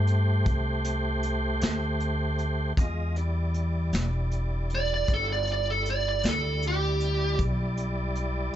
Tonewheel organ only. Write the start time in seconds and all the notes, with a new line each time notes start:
Already playing: A3 G4 C5
2.78 G#3 F4 D#5
3.17 G3 E4 D5
7.37 G3 E4 D5